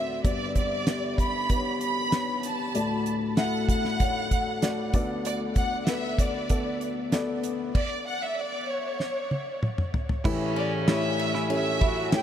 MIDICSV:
0, 0, Header, 1, 6, 480
1, 0, Start_track
1, 0, Tempo, 625000
1, 189, Time_signature, 4, 2, 24, 8
1, 9389, End_track
2, 0, Start_track
2, 0, Title_t, "Violin section"
2, 0, Program_c, 0, 48
2, 0, Note_on_c, 0, 76, 65
2, 176, Note_off_c, 0, 76, 0
2, 198, Note_on_c, 0, 74, 83
2, 417, Note_off_c, 0, 74, 0
2, 440, Note_on_c, 0, 74, 80
2, 884, Note_off_c, 0, 74, 0
2, 916, Note_on_c, 0, 83, 83
2, 1363, Note_off_c, 0, 83, 0
2, 1400, Note_on_c, 0, 83, 89
2, 1844, Note_off_c, 0, 83, 0
2, 1883, Note_on_c, 0, 81, 74
2, 2357, Note_off_c, 0, 81, 0
2, 2594, Note_on_c, 0, 78, 100
2, 2816, Note_off_c, 0, 78, 0
2, 2835, Note_on_c, 0, 78, 94
2, 3763, Note_off_c, 0, 78, 0
2, 4040, Note_on_c, 0, 74, 80
2, 4146, Note_off_c, 0, 74, 0
2, 4273, Note_on_c, 0, 78, 85
2, 4446, Note_off_c, 0, 78, 0
2, 4467, Note_on_c, 0, 78, 66
2, 4510, Note_on_c, 0, 76, 92
2, 4516, Note_off_c, 0, 78, 0
2, 4751, Note_off_c, 0, 76, 0
2, 4755, Note_on_c, 0, 74, 75
2, 5234, Note_off_c, 0, 74, 0
2, 5959, Note_on_c, 0, 74, 87
2, 6179, Note_off_c, 0, 74, 0
2, 6199, Note_on_c, 0, 78, 84
2, 6307, Note_off_c, 0, 78, 0
2, 6319, Note_on_c, 0, 76, 77
2, 6436, Note_off_c, 0, 76, 0
2, 6438, Note_on_c, 0, 74, 79
2, 6674, Note_on_c, 0, 73, 69
2, 6675, Note_off_c, 0, 74, 0
2, 7393, Note_off_c, 0, 73, 0
2, 8127, Note_on_c, 0, 74, 77
2, 8231, Note_off_c, 0, 74, 0
2, 8367, Note_on_c, 0, 76, 90
2, 8808, Note_off_c, 0, 76, 0
2, 8854, Note_on_c, 0, 76, 90
2, 9291, Note_off_c, 0, 76, 0
2, 9332, Note_on_c, 0, 79, 99
2, 9389, Note_off_c, 0, 79, 0
2, 9389, End_track
3, 0, Start_track
3, 0, Title_t, "Upright piano"
3, 0, Program_c, 1, 0
3, 0, Control_c, 1, 64, 127
3, 0, Note_on_c, 1, 38, 58
3, 0, Note_on_c, 1, 45, 57
3, 0, Note_on_c, 1, 60, 59
3, 0, Note_on_c, 1, 66, 56
3, 0, Note_on_c, 1, 71, 65
3, 0, Note_on_c, 1, 74, 64
3, 136, Note_off_c, 1, 60, 0
3, 138, Note_off_c, 1, 66, 0
3, 141, Note_off_c, 1, 74, 0
3, 159, Note_off_c, 1, 45, 0
3, 160, Note_off_c, 1, 38, 0
3, 181, Note_on_c, 1, 59, 61
3, 186, Note_on_c, 1, 50, 50
3, 187, Note_on_c, 1, 43, 55
3, 187, Note_on_c, 1, 67, 58
3, 191, Note_on_c, 1, 74, 67
3, 199, Control_c, 1, 64, 0
3, 207, Note_off_c, 1, 71, 0
3, 321, Control_c, 1, 64, 127
3, 616, Note_off_c, 1, 59, 0
3, 619, Note_off_c, 1, 67, 0
3, 621, Note_off_c, 1, 74, 0
3, 664, Note_on_c, 1, 59, 58
3, 669, Note_on_c, 1, 67, 54
3, 674, Note_on_c, 1, 74, 63
3, 1098, Note_off_c, 1, 59, 0
3, 1100, Note_off_c, 1, 67, 0
3, 1102, Note_off_c, 1, 74, 0
3, 1142, Note_on_c, 1, 59, 54
3, 1147, Note_on_c, 1, 67, 53
3, 1151, Note_on_c, 1, 71, 51
3, 1200, Note_off_c, 1, 71, 0
3, 1201, Note_on_c, 1, 73, 66
3, 1577, Note_off_c, 1, 59, 0
3, 1579, Note_off_c, 1, 67, 0
3, 1607, Note_off_c, 1, 73, 0
3, 1622, Note_on_c, 1, 59, 64
3, 1626, Note_on_c, 1, 67, 54
3, 1631, Note_on_c, 1, 73, 66
3, 2057, Note_off_c, 1, 59, 0
3, 2059, Note_off_c, 1, 67, 0
3, 2062, Note_off_c, 1, 73, 0
3, 2078, Note_off_c, 1, 50, 0
3, 2079, Note_off_c, 1, 43, 0
3, 2104, Note_on_c, 1, 57, 62
3, 2108, Note_on_c, 1, 66, 57
3, 2109, Note_on_c, 1, 38, 53
3, 2109, Note_on_c, 1, 45, 53
3, 2114, Note_on_c, 1, 74, 73
3, 2122, Control_c, 1, 64, 0
3, 2263, Control_c, 1, 64, 127
3, 2538, Note_off_c, 1, 57, 0
3, 2540, Note_off_c, 1, 66, 0
3, 2543, Note_off_c, 1, 74, 0
3, 2584, Note_on_c, 1, 57, 63
3, 2589, Note_on_c, 1, 64, 47
3, 2594, Note_on_c, 1, 76, 74
3, 2639, Note_on_c, 1, 66, 57
3, 2640, Note_off_c, 1, 64, 0
3, 3018, Note_off_c, 1, 57, 0
3, 3023, Note_off_c, 1, 76, 0
3, 3046, Note_off_c, 1, 66, 0
3, 3065, Note_on_c, 1, 57, 61
3, 3069, Note_on_c, 1, 66, 54
3, 3075, Note_on_c, 1, 73, 66
3, 3499, Note_off_c, 1, 57, 0
3, 3501, Note_off_c, 1, 66, 0
3, 3504, Note_off_c, 1, 73, 0
3, 3546, Note_on_c, 1, 57, 74
3, 3551, Note_on_c, 1, 66, 68
3, 3555, Note_on_c, 1, 74, 77
3, 3760, Note_off_c, 1, 38, 0
3, 3760, Note_off_c, 1, 45, 0
3, 3786, Note_off_c, 1, 74, 0
3, 3787, Note_on_c, 1, 59, 70
3, 3789, Note_off_c, 1, 57, 0
3, 3791, Note_off_c, 1, 66, 0
3, 3791, Note_on_c, 1, 38, 59
3, 3792, Note_on_c, 1, 50, 58
3, 3792, Note_on_c, 1, 69, 66
3, 3797, Note_on_c, 1, 74, 87
3, 3803, Control_c, 1, 64, 0
3, 3931, Control_c, 1, 64, 127
3, 4436, Note_off_c, 1, 59, 0
3, 4438, Note_off_c, 1, 69, 0
3, 4441, Note_off_c, 1, 74, 0
3, 4509, Note_on_c, 1, 59, 64
3, 4514, Note_on_c, 1, 69, 61
3, 4520, Note_on_c, 1, 71, 68
3, 4941, Note_off_c, 1, 59, 0
3, 4944, Note_off_c, 1, 69, 0
3, 4947, Note_off_c, 1, 71, 0
3, 4987, Note_on_c, 1, 59, 58
3, 4992, Note_on_c, 1, 69, 58
3, 4996, Note_on_c, 1, 74, 63
3, 5420, Note_off_c, 1, 59, 0
3, 5423, Note_off_c, 1, 69, 0
3, 5425, Note_off_c, 1, 74, 0
3, 5466, Note_on_c, 1, 59, 75
3, 5472, Note_on_c, 1, 69, 70
3, 5478, Note_on_c, 1, 74, 79
3, 5681, Note_off_c, 1, 38, 0
3, 5682, Note_off_c, 1, 50, 0
3, 5900, Note_off_c, 1, 59, 0
3, 5903, Note_off_c, 1, 69, 0
3, 5906, Note_off_c, 1, 74, 0
3, 5963, Control_c, 1, 64, 0
3, 7868, Note_on_c, 1, 57, 81
3, 7872, Note_on_c, 1, 64, 79
3, 7874, Note_on_c, 1, 45, 79
3, 7874, Note_on_c, 1, 52, 79
3, 7875, Note_on_c, 1, 67, 77
3, 7877, Note_on_c, 1, 73, 91
3, 7997, Control_c, 1, 64, 127
3, 8300, Note_off_c, 1, 57, 0
3, 8302, Note_off_c, 1, 64, 0
3, 8304, Note_off_c, 1, 67, 0
3, 8305, Note_off_c, 1, 73, 0
3, 8350, Note_on_c, 1, 57, 75
3, 8353, Note_on_c, 1, 64, 66
3, 8356, Note_on_c, 1, 67, 70
3, 8360, Note_on_c, 1, 73, 85
3, 8781, Note_off_c, 1, 57, 0
3, 8782, Note_off_c, 1, 64, 0
3, 8784, Note_off_c, 1, 67, 0
3, 8786, Note_off_c, 1, 73, 0
3, 8828, Note_on_c, 1, 57, 69
3, 8832, Note_on_c, 1, 64, 62
3, 8836, Note_on_c, 1, 67, 66
3, 8838, Note_on_c, 1, 73, 77
3, 9260, Note_off_c, 1, 57, 0
3, 9261, Note_off_c, 1, 64, 0
3, 9264, Note_off_c, 1, 67, 0
3, 9265, Note_off_c, 1, 73, 0
3, 9305, Note_on_c, 1, 57, 72
3, 9308, Note_on_c, 1, 64, 68
3, 9310, Note_on_c, 1, 67, 67
3, 9314, Note_on_c, 1, 73, 85
3, 9389, Note_off_c, 1, 45, 0
3, 9389, Note_off_c, 1, 52, 0
3, 9389, Note_off_c, 1, 57, 0
3, 9389, Note_off_c, 1, 64, 0
3, 9389, Note_off_c, 1, 67, 0
3, 9389, Note_off_c, 1, 73, 0
3, 9389, End_track
4, 0, Start_track
4, 0, Title_t, "Clean electric guitar"
4, 0, Program_c, 2, 27
4, 7874, Note_on_c, 2, 64, 98
4, 8101, Note_off_c, 2, 64, 0
4, 8115, Note_on_c, 2, 61, 81
4, 8341, Note_off_c, 2, 61, 0
4, 8355, Note_on_c, 2, 64, 69
4, 8467, Note_off_c, 2, 64, 0
4, 8714, Note_on_c, 2, 64, 67
4, 8826, Note_off_c, 2, 64, 0
4, 8833, Note_on_c, 2, 61, 89
4, 9060, Note_off_c, 2, 61, 0
4, 9071, Note_on_c, 2, 64, 74
4, 9185, Note_off_c, 2, 64, 0
4, 9389, End_track
5, 0, Start_track
5, 0, Title_t, "French horn section"
5, 0, Program_c, 3, 60
5, 7876, Note_on_c, 3, 61, 96
5, 7878, Note_on_c, 3, 49, 82
5, 8814, Note_off_c, 3, 61, 0
5, 8815, Note_off_c, 3, 49, 0
5, 9072, Note_on_c, 3, 54, 75
5, 9072, Note_on_c, 3, 66, 84
5, 9306, Note_off_c, 3, 54, 0
5, 9306, Note_off_c, 3, 66, 0
5, 9389, End_track
6, 0, Start_track
6, 0, Title_t, "Drums"
6, 188, Note_on_c, 9, 36, 104
6, 189, Note_on_c, 9, 42, 74
6, 265, Note_off_c, 9, 36, 0
6, 266, Note_off_c, 9, 42, 0
6, 426, Note_on_c, 9, 42, 54
6, 428, Note_on_c, 9, 36, 76
6, 503, Note_off_c, 9, 42, 0
6, 505, Note_off_c, 9, 36, 0
6, 666, Note_on_c, 9, 42, 73
6, 667, Note_on_c, 9, 38, 95
6, 743, Note_off_c, 9, 42, 0
6, 744, Note_off_c, 9, 38, 0
6, 908, Note_on_c, 9, 36, 79
6, 914, Note_on_c, 9, 42, 72
6, 985, Note_off_c, 9, 36, 0
6, 991, Note_off_c, 9, 42, 0
6, 1148, Note_on_c, 9, 42, 67
6, 1150, Note_on_c, 9, 36, 75
6, 1225, Note_off_c, 9, 42, 0
6, 1227, Note_off_c, 9, 36, 0
6, 1389, Note_on_c, 9, 42, 58
6, 1465, Note_off_c, 9, 42, 0
6, 1629, Note_on_c, 9, 42, 77
6, 1631, Note_on_c, 9, 38, 94
6, 1706, Note_off_c, 9, 42, 0
6, 1708, Note_off_c, 9, 38, 0
6, 1868, Note_on_c, 9, 42, 68
6, 1944, Note_off_c, 9, 42, 0
6, 2111, Note_on_c, 9, 42, 77
6, 2187, Note_off_c, 9, 42, 0
6, 2350, Note_on_c, 9, 42, 54
6, 2427, Note_off_c, 9, 42, 0
6, 2589, Note_on_c, 9, 42, 65
6, 2590, Note_on_c, 9, 38, 97
6, 2666, Note_off_c, 9, 38, 0
6, 2666, Note_off_c, 9, 42, 0
6, 2830, Note_on_c, 9, 36, 82
6, 2836, Note_on_c, 9, 42, 69
6, 2907, Note_off_c, 9, 36, 0
6, 2913, Note_off_c, 9, 42, 0
6, 2954, Note_on_c, 9, 38, 30
6, 3031, Note_off_c, 9, 38, 0
6, 3071, Note_on_c, 9, 42, 71
6, 3073, Note_on_c, 9, 36, 81
6, 3147, Note_off_c, 9, 42, 0
6, 3150, Note_off_c, 9, 36, 0
6, 3312, Note_on_c, 9, 36, 63
6, 3312, Note_on_c, 9, 42, 62
6, 3389, Note_off_c, 9, 36, 0
6, 3389, Note_off_c, 9, 42, 0
6, 3550, Note_on_c, 9, 42, 84
6, 3552, Note_on_c, 9, 38, 82
6, 3627, Note_off_c, 9, 42, 0
6, 3629, Note_off_c, 9, 38, 0
6, 3790, Note_on_c, 9, 42, 71
6, 3792, Note_on_c, 9, 36, 82
6, 3867, Note_off_c, 9, 42, 0
6, 3868, Note_off_c, 9, 36, 0
6, 4032, Note_on_c, 9, 42, 76
6, 4109, Note_off_c, 9, 42, 0
6, 4268, Note_on_c, 9, 42, 55
6, 4270, Note_on_c, 9, 36, 77
6, 4344, Note_off_c, 9, 42, 0
6, 4347, Note_off_c, 9, 36, 0
6, 4506, Note_on_c, 9, 42, 69
6, 4507, Note_on_c, 9, 38, 94
6, 4583, Note_off_c, 9, 42, 0
6, 4584, Note_off_c, 9, 38, 0
6, 4750, Note_on_c, 9, 36, 86
6, 4753, Note_on_c, 9, 42, 73
6, 4827, Note_off_c, 9, 36, 0
6, 4830, Note_off_c, 9, 42, 0
6, 4987, Note_on_c, 9, 42, 67
6, 4993, Note_on_c, 9, 36, 76
6, 5064, Note_off_c, 9, 42, 0
6, 5069, Note_off_c, 9, 36, 0
6, 5230, Note_on_c, 9, 42, 56
6, 5307, Note_off_c, 9, 42, 0
6, 5470, Note_on_c, 9, 42, 72
6, 5471, Note_on_c, 9, 38, 89
6, 5546, Note_off_c, 9, 42, 0
6, 5548, Note_off_c, 9, 38, 0
6, 5710, Note_on_c, 9, 42, 74
6, 5787, Note_off_c, 9, 42, 0
6, 5952, Note_on_c, 9, 36, 94
6, 5953, Note_on_c, 9, 49, 74
6, 6028, Note_off_c, 9, 36, 0
6, 6030, Note_off_c, 9, 49, 0
6, 6912, Note_on_c, 9, 38, 47
6, 6988, Note_off_c, 9, 38, 0
6, 7151, Note_on_c, 9, 48, 55
6, 7228, Note_off_c, 9, 48, 0
6, 7393, Note_on_c, 9, 47, 68
6, 7470, Note_off_c, 9, 47, 0
6, 7513, Note_on_c, 9, 45, 68
6, 7590, Note_off_c, 9, 45, 0
6, 7633, Note_on_c, 9, 43, 76
6, 7710, Note_off_c, 9, 43, 0
6, 7752, Note_on_c, 9, 43, 76
6, 7828, Note_off_c, 9, 43, 0
6, 7872, Note_on_c, 9, 36, 120
6, 7873, Note_on_c, 9, 49, 101
6, 7949, Note_off_c, 9, 36, 0
6, 7950, Note_off_c, 9, 49, 0
6, 8112, Note_on_c, 9, 51, 51
6, 8188, Note_off_c, 9, 51, 0
6, 8353, Note_on_c, 9, 38, 107
6, 8353, Note_on_c, 9, 51, 70
6, 8429, Note_off_c, 9, 51, 0
6, 8430, Note_off_c, 9, 38, 0
6, 8597, Note_on_c, 9, 51, 66
6, 8674, Note_off_c, 9, 51, 0
6, 8716, Note_on_c, 9, 38, 37
6, 8793, Note_off_c, 9, 38, 0
6, 8831, Note_on_c, 9, 51, 65
6, 8908, Note_off_c, 9, 51, 0
6, 9071, Note_on_c, 9, 51, 55
6, 9074, Note_on_c, 9, 36, 83
6, 9148, Note_off_c, 9, 51, 0
6, 9150, Note_off_c, 9, 36, 0
6, 9310, Note_on_c, 9, 51, 79
6, 9312, Note_on_c, 9, 38, 100
6, 9387, Note_off_c, 9, 51, 0
6, 9388, Note_off_c, 9, 38, 0
6, 9389, End_track
0, 0, End_of_file